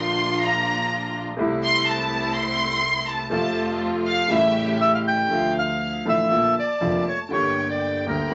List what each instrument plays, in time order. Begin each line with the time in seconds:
Already playing: grand piano A#1 A#2 D3 F3 A#3 F4, double bass A#1, string section A#3 D4 F4, violin section C6
0.43 violin section A#5
1.37 grand piano C2 C3 G3 A3 E4, double bass C2, string section A3 C4 E4
1.64 violin section C6
1.88 violin section A5
2.34 violin section C6
3.07 violin section A5
3.30 grand piano F2 C3 F3 A3 F4, double bass F2, string section A3 C4 F4, violin section A5
4.06 violin section F5
4.28 grand piano A1 A2 C#3 G3 A3, double bass A1, string section A3 C#4 G4, violin section E5
4.32 grand piano E4
4.81 bandoneon E5
4.95 bandoneon F5
5.08 bandoneon G5
5.29 double bass D2, grand piano D2 D3 F3 A3, violin section F5
5.33 grand piano F4
5.59 bandoneon F5
6.05 grand piano A1 A2 D3 F3 A3 F4, double bass A1, bandoneon E5
6.31 double bass A#1, grand piano A#1 A#2 D3 F3 A#3 F4, violin section A5
6.59 bandoneon D5
6.81 grand piano F1 F2 D3 F3 A#3 F4, double bass F1
7.08 bandoneon C#5
7.29 grand piano G1 G2 D3 G3 A#3, double bass G1, violin section G5
7.33 grand piano G4, bandoneon C#5
7.70 bandoneon D5
8.06 grand piano D2 D3 G3 A#3 G4, double bass D2, bandoneon A#4